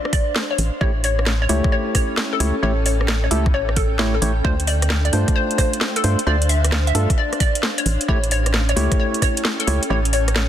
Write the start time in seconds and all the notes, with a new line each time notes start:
Already playing: D4 C5 F5
0.05 cross-stick
0.13 D5, kick, open hi-hat
0.36 snare
0.51 C#5
0.58 A1 C#4, open hi-hat
0.81 A1 A3 E4 G4 C#5, kick
1.04 C#5, open hi-hat
1.18 A4, cross-stick
1.26 snare
1.42 C#5
1.49 C#2 A3 E4 G4 C#5, open hi-hat
1.64 kick, cross-stick
1.72 C#5
1.93 C#5 G5, kick, cross-stick, open hi-hat
2.17 snare
2.33 A4
2.40 C#2 A3 E4 G4 C#5, open hi-hat
2.63 A1 A3 E4 G4 C#5
2.86 C#5, open hi-hat
3.01 cross-stick
3.08 snare
3.24 C#5
3.31 C#2 A3 E4 G4 A4, open hi-hat
3.46 kick, cross-stick
3.54 A1 C#5
3.69 cross-stick
3.76 A4, kick, open hi-hat
3.99 A3 E4 G4 C#5, snare
4.14 A4
4.22 A1 A3 E4 G4 C#5, open hi-hat
4.44 D2 A3 D4 F4 C5, kick
4.60 closed hi-hat
4.67 D5, open hi-hat
4.77 C5
4.82 cross-stick, closed hi-hat
4.90 snare
5.05 D5, closed hi-hat
5.13 G2 A3 D4 F4 C5, open hi-hat
5.28 kick, cross-stick, closed hi-hat
5.36 C5
5.51 closed hi-hat
5.58 C5, kick, cross-stick, open hi-hat
5.73 F5, closed hi-hat
5.81 snare
5.96 A4, closed hi-hat
6.04 G2 A3 D4 F4 C5, open hi-hat
6.19 closed hi-hat
6.27 D2 A3 D4 F4 C5 D5
6.42 closed hi-hat
6.49 E5, open hi-hat
6.64 cross-stick, closed hi-hat
6.72 snare
6.87 E5, closed hi-hat
6.95 G2 A3 D4 F4 A4, open hi-hat
7.10 kick, cross-stick, closed hi-hat
7.18 D5
7.33 cross-stick, closed hi-hat
7.40 D5, kick, open hi-hat
7.55 closed hi-hat
7.63 snare
7.78 C#5, closed hi-hat
7.85 A1 C#4, open hi-hat
8.01 closed hi-hat
8.08 A1 A3 E4 G4 C#5, kick
8.24 closed hi-hat
8.31 C#5, open hi-hat
8.40 A4
8.46 cross-stick, closed hi-hat
8.54 snare
8.69 C#5, closed hi-hat
8.76 C#2 A3 E4 G4 C#5, open hi-hat
8.92 kick, cross-stick, closed hi-hat
9.00 C#5
9.06 G5
9.14 closed hi-hat
9.22 C#5, kick, cross-stick, open hi-hat
9.37 closed hi-hat
9.45 snare
9.60 A4, closed hi-hat
9.67 C#2 A3 E4 G4 C#5, open hi-hat
9.83 closed hi-hat
9.90 A1 A3 E4 G4 C#5
10.05 closed hi-hat
10.13 C#5, open hi-hat
10.28 cross-stick, closed hi-hat
10.36 snare